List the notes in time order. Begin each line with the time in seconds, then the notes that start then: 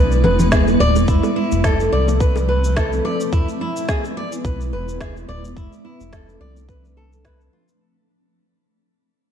Already playing: B1 G#3 B3 E4 B4
0.12 shaker
0.24 E1 B4, high bongo, low conga
0.39 low conga, shaker
0.52 G#4, kick, snare, shaker
0.67 high bongo, shaker
0.80 D1 D5, high conga
0.96 E1, high bongo, high conga, shaker
1.08 F1 F3 A3 C4 E4, kick, shaker
1.23 high bongo, shaker
1.36 E4
1.52 F1, high conga, shaker
1.64 A4, kick, snare, shaker
1.80 shaker
1.92 C2 D5
2.08 high bongo, high conga, shaker
2.20 B4, kick, shaker
2.36 high bongo, shaker
2.48 B4
2.64 shaker
2.77 A4, kick, snare, shaker
2.93 shaker
3.05 D5, high bongo
3.20 shaker
3.32 E1 G#3 B3 E4 B4, kick, shaker
3.49 shaker
3.61 E4
3.77 shaker
3.89 G#4, kick, snare, shaker
4.04 shaker
4.17 D5
4.32 shaker
4.45 B1 B4, kick, shaker
4.61 shaker
4.73 E1 B4
4.89 shaker
5.01 G#4, kick, snare, shaker
5.17 shaker
5.29 D1 D5
5.45 E1, shaker
5.56 F1 F3 A3 C4 D4 E4, kick, shaker
5.73 shaker
5.85 E4
6.00 F1, shaker
6.13 A4, kick, snare, shaker
6.29 shaker
6.41 C2 D5
6.57 shaker
6.69 B4, kick, shaker
6.85 shaker
6.97 A4
7.13 shaker
7.25 B4, kick, snare, shaker
7.41 shaker
7.53 F4
7.68 shaker